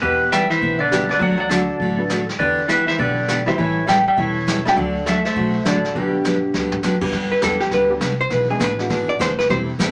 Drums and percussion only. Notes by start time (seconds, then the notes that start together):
0.02 brush sweep, kick
0.32 snare, hi-hat pedal
0.50 snare
0.62 brush sweep, kick
0.92 snare, hi-hat pedal
1.10 snare
1.21 brush sweep, kick
1.50 snare, hi-hat pedal
1.80 brush sweep, kick
2.09 snare, hi-hat pedal
2.29 snare
2.39 brush sweep, kick
2.69 snare, hi-hat pedal
2.88 snare
2.99 brush sweep, kick
3.28 snare, hi-hat pedal
3.47 snare
3.58 brush sweep, kick
3.88 snare, hi-hat pedal
4.18 brush sweep, kick
4.48 snare, hi-hat pedal
4.66 snare
4.77 brush sweep, kick
5.07 snare, hi-hat pedal
5.25 snare
5.36 brush sweep, kick
5.65 snare, hi-hat pedal
5.84 snare
5.95 brush sweep, kick
6.25 snare, hi-hat pedal
6.54 snare
6.72 mid tom
6.83 snare, hi-hat pedal
7.01 kick, crash
7.12 brush sweep, kick, snare
7.42 kick, snare, hi-hat pedal
7.60 snare
7.71 brush sweep, kick, snare
8.01 kick, snare, hi-hat pedal
8.30 brush sweep, kick, snare
8.60 kick, snare, hi-hat pedal
8.79 snare
8.90 brush sweep, kick, snare
9.20 kick, snare, hi-hat pedal
9.39 snare
9.50 brush sweep, kick, snare
9.79 kick, snare, hi-hat pedal